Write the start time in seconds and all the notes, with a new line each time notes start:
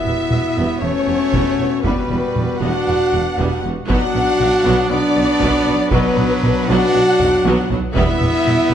Already playing: B3 E4 F#4 E5
0.05 E1 E2 G3 B3, taiko mid
0.31 E1 E2 F#3 G3, taiko mid
0.56 E1 E2 G3 B3
0.81 E1 E2 G3 A3 B3 C#4 C#5
1.07 E1 E2 F#3 G3
1.33 E1 E2 G3 B3, taiko
1.58 E1 E2 G3 B3
1.83 E1 E2 G3 B3 B4, taiko
2.09 E1 E2 G3 B3, taiko mid
2.35 E1 E2 F#3 G3, taiko mid
2.60 E1 E2 G3 B3 D4 F#4 F#5
2.86 E1 E2 G3 B3
3.12 E1 E2 F#3 G3
3.38 E1 E2 G3 B3, taiko
3.63 E1 E2 G3 B3
3.88 B1 B2 F#3 B3 D4 F#4 F#5, taiko
4.14 B1 B2 F#3 B3, taiko mid
4.40 B1 B2 D3 F#3, taiko mid
4.65 B1 B2 F#3 B3
4.90 B1 B2 F#3 B3 D4 D5
5.16 B1 B2 D3 F#3
5.41 B1 B2 F#3 B3, taiko
5.66 B1 B2 F#3 B3
5.91 B1 B2 F#3 B3 B4, taiko
6.17 B1 B2 F#3 B3, taiko mid
6.42 B1 B2 D3 F#3, taiko mid
6.68 B1 B2 F#3 B3 D4 F#4 F#5
6.94 B1 B2 F#3 B3
7.19 B1 B2 D3 F#3, taiko low-mid
7.45 B1 B2 F#3 B3, taiko high
7.70 B1 B2 F#3 B3, taiko low
7.95 E1 E2 G3 B3 E4 E5, taiko
8.20 E1 E2 G3 B3, taiko mid
8.45 E1 E2 F#3 G3, taiko mid